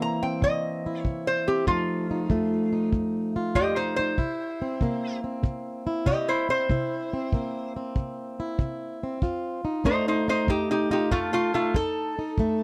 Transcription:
Already playing: C3 E3 A#3 C4 E4
0.02 A#5
0.23 C4 G5
0.42 C3 D#5, kick
0.86 E4
1.00 C#5
1.05 C3, kick
1.27 C5
1.48 C4 G4
1.67 F2 F3 A3 D#4 F4, kick
2.11 D#4
2.30 F2 A3, kick
2.73 D#4
2.92 F2, kick
3.36 F4
3.55 F2 G4 D#5, kick
3.76 D#4 C5
3.96 D#4 C5
4.18 C3 E4, kick
4.62 C4
4.81 C3 A#3, kick
5.24 C4
5.43 C3, kick
5.87 E4
6.06 C3 G4 D#5, kick
6.28 E4 C5
6.49 C4 C5
6.70 C3 E4, kick
7.13 C4
7.33 C3 A#3, kick
7.76 C4
7.96 C3, kick
8.40 E4
8.59 C3, kick
9.03 C4
9.22 F2 F4, kick
9.65 D#4
9.84 F2 A3 D#4 C5, kick
10.08 D#4 C5
10.28 D#4 C5
10.47 F2 D#4 G4, kick
10.71 D#4 G4
10.91 D#4 F4 G4
11.11 F2 A3 F4, kick
11.33 A3 F4
11.54 A3 D#4 F4
11.74 F2 D#4 A4, kick
12.19 D#4
12.38 F2 A3, kick

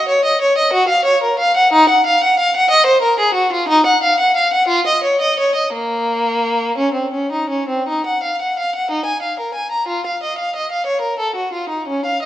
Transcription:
0.09 C#5
0.25 D#5
0.41 C#5
0.58 D#5
0.73 F#4
0.88 F5
1.05 C#5
1.23 A#4
1.39 F5
1.57 F#5
1.73 D#4
1.89 F#5
2.06 F5
2.24 F#5
2.39 F5
2.56 F#5
2.71 D#5
2.86 C5
3.02 A#4
3.19 G#4
3.34 F#4
3.53 F4
3.69 D#4
3.86 F#5
4.03 F5
4.20 F#5
4.36 F5
4.54 F#5
4.68 F4
4.87 D#5
5.04 C#5
5.21 D#5
5.40 C#5
5.55 D#5
5.73 A#3
6.78 C#4
6.94 C4
7.13 C#4
7.32 D#4
7.50 C#4
7.69 C4
7.88 D#4
8.06 F#5
8.23 F5
8.42 F#5
8.59 F5
8.75 F#5
8.91 D#4
9.06 G#5
9.22 F5
9.39 A#4
9.54 G#5
9.72 A#5
9.88 F4
10.07 F5
10.23 D#5
10.38 F5
10.56 D#5
10.72 F5
10.86 C#5
11.01 A#4
11.19 A4
11.35 F#4
11.53 F4
11.69 D#4
11.88 C#4
12.05 F5
12.22 D#5

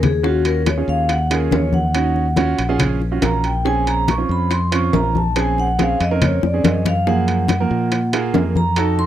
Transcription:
Already playing: D#2
0.03 G#4, low bongo, low conga, high timbale
0.23 C#4 F4 F#4, high bongo, high conga
0.45 A#4, high bongo, high conga, high timbale
0.66 C#5, high bongo, high conga, high timbale, low timbale
0.78 C#4 F4 G#4
0.88 D#2 F5, high conga
1.09 F#5, high bongo, high conga, high timbale
1.30 C#4 F4 G#4 A#4, high bongo, high conga, high timbale
1.51 D#2 C#5, high bongo, low bongo, high conga, low timbale
1.72 F#5, high bongo, high conga
1.94 C#4 D#4 F#4, high bongo, high conga, high timbale
2.15 high bongo, high conga
2.36 C#4 F4 F#4, high bongo, high conga, high timbale, low timbale
2.58 A#1, high conga, high timbale
2.69 C#4 F4 G#4
2.79 high bongo, high conga, low conga, high timbale
3.00 high bongo, high conga
3.11 C#4 F4 F#4
3.22 A#1 A#5, high bongo, low bongo, high conga, high timbale, low timbale
3.44 G5, high bongo, high timbale
3.65 C4 C#4 G#4 G#5, high bongo, high conga
3.87 A#5, high bongo, high conga, high timbale
4.08 C#6, high bongo, high conga, high timbale, low timbale
4.18 C4 C#4 F4
4.29 F2 B5, high conga
4.51 C6, high bongo, high conga, high timbale
4.72 C4 C#4 F4 C#6, high bongo, high conga, high timbale
4.93 A#1 A#5, high bongo, low bongo, high conga, low timbale
5.15 A5, high bongo, high conga
5.36 C4 C#4 G#4 G#5, high bongo, high conga, high timbale
5.58 F#5, high bongo, high conga
5.79 C4 C#4 G#4 F5, high bongo, high conga, high timbale, low timbale
6.00 F2 D#5, high conga, high timbale
6.11 C4 C#4 A#4
6.22 C#5, high bongo, high conga, low conga, high timbale
6.43 F2 D5, high bongo, high conga
6.54 C4 C#4 G#4
6.64 F#2 D#5, low bongo, high conga, high timbale, low timbale
6.85 F5, low bongo, high conga, high timbale
7.06 F3 A#3 G#4 F#5, high bongo, high conga
7.28 high bongo, high conga, high timbale
7.48 high bongo, high conga, high timbale, low timbale
7.60 F3 A#3 A#4
7.70 A#2, high conga
7.91 high bongo, high conga, high timbale
8.13 A#3 F4 G#4, high bongo, high conga, high timbale
8.34 F2, high bongo, low bongo, high conga, low timbale
8.55 A#5, high bongo, high conga
8.76 D#4 F#4 A4 A5, high bongo, high conga, high timbale
8.99 C6, high bongo, high conga

